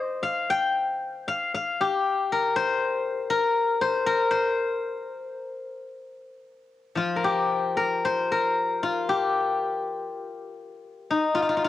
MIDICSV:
0, 0, Header, 1, 2, 480
1, 0, Start_track
1, 0, Tempo, 1045296
1, 341, Time_signature, 2, 2, 24, 8
1, 818, Tempo, 1010101
1, 2258, Tempo, 1047120
1, 2738, Tempo, 1090909
1, 3698, Tempo, 1038062
1, 4178, Tempo, 1011804
1, 5414, End_track
2, 0, Start_track
2, 0, Title_t, "Guzheng"
2, 0, Program_c, 0, 107
2, 0, Note_on_c, 0, 72, 64
2, 0, Note_on_c, 0, 75, 73
2, 7, Note_off_c, 0, 72, 0
2, 7, Note_off_c, 0, 75, 0
2, 7, Note_on_c, 0, 72, 73
2, 104, Note_on_c, 0, 77, 83
2, 229, Note_on_c, 0, 79, 90
2, 585, Note_off_c, 0, 77, 0
2, 587, Note_on_c, 0, 77, 73
2, 676, Note_off_c, 0, 72, 0
2, 707, Note_off_c, 0, 77, 0
2, 709, Note_on_c, 0, 77, 72
2, 830, Note_on_c, 0, 67, 79
2, 946, Note_off_c, 0, 79, 0
2, 1075, Note_on_c, 0, 70, 73
2, 1188, Note_on_c, 0, 72, 92
2, 1497, Note_off_c, 0, 77, 0
2, 1538, Note_off_c, 0, 70, 0
2, 1540, Note_on_c, 0, 70, 93
2, 1782, Note_off_c, 0, 72, 0
2, 1784, Note_on_c, 0, 72, 89
2, 1901, Note_off_c, 0, 70, 0
2, 1903, Note_on_c, 0, 70, 89
2, 1948, Note_off_c, 0, 67, 0
2, 2016, Note_off_c, 0, 72, 0
2, 2018, Note_on_c, 0, 72, 86
2, 2883, Note_off_c, 0, 70, 0
2, 2963, Note_off_c, 0, 72, 0
2, 3220, Note_on_c, 0, 53, 53
2, 3228, Note_on_c, 0, 65, 70
2, 3311, Note_on_c, 0, 70, 48
2, 3347, Note_on_c, 0, 67, 68
2, 3577, Note_off_c, 0, 70, 0
2, 3579, Note_on_c, 0, 70, 70
2, 3702, Note_on_c, 0, 72, 79
2, 3824, Note_off_c, 0, 70, 0
2, 3826, Note_on_c, 0, 70, 75
2, 4061, Note_off_c, 0, 65, 0
2, 4063, Note_on_c, 0, 65, 71
2, 4181, Note_off_c, 0, 67, 0
2, 4183, Note_on_c, 0, 67, 71
2, 4629, Note_off_c, 0, 72, 0
2, 4653, Note_off_c, 0, 53, 0
2, 4824, Note_off_c, 0, 70, 0
2, 5139, Note_on_c, 0, 63, 67
2, 5251, Note_off_c, 0, 65, 0
2, 5253, Note_on_c, 0, 65, 71
2, 5288, Note_off_c, 0, 65, 0
2, 5290, Note_on_c, 0, 65, 56
2, 5299, Note_off_c, 0, 67, 0
2, 5319, Note_off_c, 0, 65, 0
2, 5321, Note_on_c, 0, 65, 64
2, 5356, Note_off_c, 0, 65, 0
2, 5358, Note_on_c, 0, 65, 52
2, 5393, Note_off_c, 0, 65, 0
2, 5395, Note_on_c, 0, 65, 70
2, 5414, Note_off_c, 0, 63, 0
2, 5414, Note_off_c, 0, 65, 0
2, 5414, End_track
0, 0, End_of_file